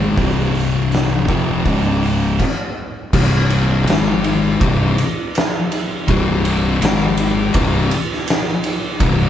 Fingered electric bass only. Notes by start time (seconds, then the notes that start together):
Already playing: G#1
0.17 C1
1.28 F1
1.65 C#1
3.13 C1
3.87 G#1
4.61 C1
6.09 C1
6.82 G#1
7.54 C1
9.00 C1